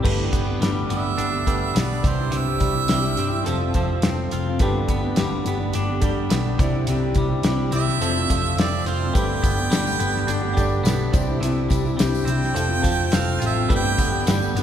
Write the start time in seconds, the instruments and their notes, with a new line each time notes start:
0.03 picked electric bass G1, steel-string acoustic guitar G2 D3 A3 B3 D4 G4, clean electric guitar G3, upright piano G4 A4 B4, kick, crash
0.32 picked electric bass G1, clean electric guitar B3, kick, closed hi-hat
0.46 steel-string acoustic guitar A3 B3 D4 G4
0.60 picked electric bass G1, steel-string acoustic guitar G2 D3 A3 B3 D4 G4, clean electric guitar G3, snare, closed hi-hat
0.90 picked electric bass G1, steel-string acoustic guitar A3 B3 D4 G4, clean electric guitar B3, harmonica E5, closed hi-hat
1.02 steel-string acoustic guitar A3 B3 D4 G4
1.16 picked electric bass G1, steel-string acoustic guitar G2 D3 A3 B3 D4 G4, clean electric guitar D4, closed hi-hat
1.30 steel-string acoustic guitar A3 B3 D4 G4
1.44 picked electric bass G1, clean electric guitar G3, steel-string acoustic guitar A3 B3 D4 G4, upright piano G4 A4 B4, kick, closed hi-hat
1.75 picked electric bass B1, clean electric guitar B3, harmonica D5, snare, closed hi-hat
2.02 picked electric bass C2, clean electric guitar C3, steel-string acoustic guitar G3 D4 E4 G4, upright piano E4 C5 D5, kick, closed hi-hat
2.08 harmonica C5
2.17 steel-string acoustic guitar D4 E4 G4
2.31 picked electric bass C2, clean electric guitar C3, steel-string acoustic guitar C3 G3 D4 E4 G4, closed hi-hat
2.37 harmonica E5
2.60 picked electric bass C2, clean electric guitar G3, kick, closed hi-hat
2.73 steel-string acoustic guitar E4 G4
2.77 steel-string acoustic guitar D4
2.87 picked electric bass C2, steel-string acoustic guitar C3 G3 D4 E4 G4, clean electric guitar G3, snare, closed hi-hat
3.00 steel-string acoustic guitar D4 E4 G4
3.15 picked electric bass G2, steel-string acoustic guitar G3 D4 E4 G4, closed hi-hat
3.19 clean electric guitar C4
3.30 steel-string acoustic guitar D4 E4 G4
3.43 picked electric bass F1, steel-string acoustic guitar F3 C4 F4 A4, clean electric guitar F3, upright piano F4 A4 C5, closed hi-hat
3.59 steel-string acoustic guitar F4 A4
3.63 steel-string acoustic guitar C4
3.72 picked electric bass F1, steel-string acoustic guitar F3 C4 F4 A4, upright piano F4 A4 C5, kick, closed hi-hat
3.76 clean electric guitar F3
4.02 picked electric bass F1, clean electric guitar C4, snare, closed hi-hat
4.30 picked electric bass F1, steel-string acoustic guitar F3 C4 F4 A4, clean electric guitar F4, closed hi-hat
4.47 steel-string acoustic guitar C4 F4 A4
4.59 picked electric bass G1, steel-string acoustic guitar G2 D3 A3 B3 D4 G4, clean electric guitar G3, upright piano G4 A4 B4, kick, closed hi-hat
4.88 picked electric bass G1, clean electric guitar B3, kick, closed hi-hat
5.01 steel-string acoustic guitar B3 D4 G4
5.05 steel-string acoustic guitar A3
5.15 picked electric bass G1, steel-string acoustic guitar G2 D3 A3 B3 D4 G4, snare, closed hi-hat
5.19 clean electric guitar G3
5.43 picked electric bass G1, steel-string acoustic guitar A3 B3 D4 G4, closed hi-hat
5.48 clean electric guitar B3
5.58 steel-string acoustic guitar A3 B3 D4 G4
5.73 picked electric bass G1, steel-string acoustic guitar G2 D3 A3 B3 D4 G4, clean electric guitar D4, closed hi-hat
5.86 steel-string acoustic guitar B3 D4 G4
5.90 steel-string acoustic guitar A3
6.01 picked electric bass G1, clean electric guitar G3, steel-string acoustic guitar A3 B3 D4 G4, upright piano G4 A4 D5, kick, closed hi-hat
6.30 picked electric bass B1, clean electric guitar B3, snare, closed hi-hat
6.58 picked electric bass C2, clean electric guitar C3, steel-string acoustic guitar G3 D4 E4, upright piano E4 C5 D5, kick, closed hi-hat
6.63 steel-string acoustic guitar G4
6.72 steel-string acoustic guitar D4 E4 G4
6.87 picked electric bass C2, steel-string acoustic guitar C3 G3 D4 E4 G4, clean electric guitar C3, closed hi-hat
7.15 picked electric bass C2, clean electric guitar G3, kick, closed hi-hat
7.29 steel-string acoustic guitar D4 E4 G4
7.43 picked electric bass C2, steel-string acoustic guitar C3 G3 D4 E4 G4, clean electric guitar G3, snare, closed hi-hat
7.72 picked electric bass C2, steel-string acoustic guitar G3 D4 E4 G4, clean electric guitar C4, closed hi-hat
7.76 harmonica E5
7.88 snare
8.01 picked electric bass F1, steel-string acoustic guitar F3 C4 F4 A4, clean electric guitar F3, upright piano F4 A4 C5, closed hi-hat
8.15 steel-string acoustic guitar C4 F4 A4
8.29 picked electric bass F1, steel-string acoustic guitar F3 C4 F4 A4, clean electric guitar F3, upright piano F4 A4 C5, kick, closed hi-hat
8.56 picked electric bass F1, clean electric guitar C4, snare, closed hi-hat
8.60 harmonica D5
8.85 picked electric bass F1, steel-string acoustic guitar F3 C4 F4 A4, clean electric guitar F4, harmonica C5, closed hi-hat
9.01 steel-string acoustic guitar C4 F4 A4
9.14 picked electric bass G1, steel-string acoustic guitar G2 D3 A3 B3 D4 G4, clean electric guitar G3, harmonium B3 G4 A4, upright piano G4 A4 B4, harmonica G5, kick, closed hi-hat, tambourine
9.43 picked electric bass G1, clean electric guitar B3, kick, closed hi-hat, tambourine
9.56 steel-string acoustic guitar B3 D4 G4, tambourine
9.60 steel-string acoustic guitar A3
9.70 picked electric bass G1, steel-string acoustic guitar G2 D3 A3 B3 D4 G4, clean electric guitar G3, snare, closed hi-hat, tambourine
9.87 tambourine
9.98 picked electric bass G1, steel-string acoustic guitar A3 B3 D4, clean electric guitar B3, closed hi-hat
10.02 steel-string acoustic guitar G4
10.16 snare, tambourine
10.26 picked electric bass G1, steel-string acoustic guitar G2 D3 A3 B3 D4 G4, clean electric guitar D4, closed hi-hat, tambourine
10.41 steel-string acoustic guitar A3 B3 D4 G4
10.54 picked electric bass G1, clean electric guitar G3, steel-string acoustic guitar A3, upright piano G4 A4 D5, kick, closed hi-hat, tambourine
10.59 steel-string acoustic guitar B3 D4 G4
10.72 tambourine
10.84 picked electric bass B1, clean electric guitar B3, snare, closed hi-hat, tambourine
11.11 picked electric bass C2, clean electric guitar C3, steel-string acoustic guitar G3, harmonium D4 E4 C5, upright piano E4 C5 D5, kick, closed hi-hat, tambourine
11.15 steel-string acoustic guitar D4 E4 G4
11.27 steel-string acoustic guitar E4 G4
11.31 steel-string acoustic guitar D4
11.40 picked electric bass C2, steel-string acoustic guitar C3 G3 D4 E4 G4, clean electric guitar C3, closed hi-hat, tambourine
11.70 picked electric bass C2, clean electric guitar G3, kick, closed hi-hat, tambourine
11.85 steel-string acoustic guitar D4 E4 G4, tambourine
11.97 picked electric bass C2, steel-string acoustic guitar C3 G3 D4 E4, clean electric guitar G3, harmonica G5, snare, closed hi-hat, tambourine
12.01 steel-string acoustic guitar G4
12.15 tambourine
12.25 picked electric bass C2, steel-string acoustic guitar G3 D4 E4, clean electric guitar C4, closed hi-hat
12.30 steel-string acoustic guitar G4
12.43 snare, tambourine
12.53 picked electric bass F1, clean electric guitar F3, steel-string acoustic guitar F3 C4 A4, harmonium C4 F4 A4, upright piano F4 A4 C5, closed hi-hat
12.57 steel-string acoustic guitar F4, tambourine
12.69 steel-string acoustic guitar F4 A4
12.73 steel-string acoustic guitar C4
12.82 picked electric bass F1, clean electric guitar F3, steel-string acoustic guitar F3 C4, upright piano F4 A4 C5, kick, closed hi-hat, tambourine
12.86 steel-string acoustic guitar F4 A4
13.00 tambourine
13.12 picked electric bass F1, clean electric guitar C4, snare, closed hi-hat, tambourine
13.16 harmonica F5
13.40 picked electric bass A1, steel-string acoustic guitar F3 C4, clean electric guitar F4, closed hi-hat
13.44 steel-string acoustic guitar F4 A4, harmonica E5
13.56 steel-string acoustic guitar C4 F4 A4
13.68 picked electric bass G1, steel-string acoustic guitar G2 D3 A3 B3 D4 G4, clean electric guitar G3, harmonium B3 G4 A4, upright piano G4 A4 B4, kick, closed hi-hat, tambourine
13.75 harmonica G5
13.98 picked electric bass G1, clean electric guitar B3, kick, closed hi-hat, tambourine
14.11 steel-string acoustic guitar A3 B3 D4 G4, tambourine
14.26 picked electric bass G1, steel-string acoustic guitar G2 D3 A3 B3 D4 G4, clean electric guitar G3, snare, closed hi-hat, tambourine
14.40 steel-string acoustic guitar A3 B3 D4 G4, tambourine
14.55 picked electric bass G1, steel-string acoustic guitar A3 B3 D4 G4, clean electric guitar B3, closed hi-hat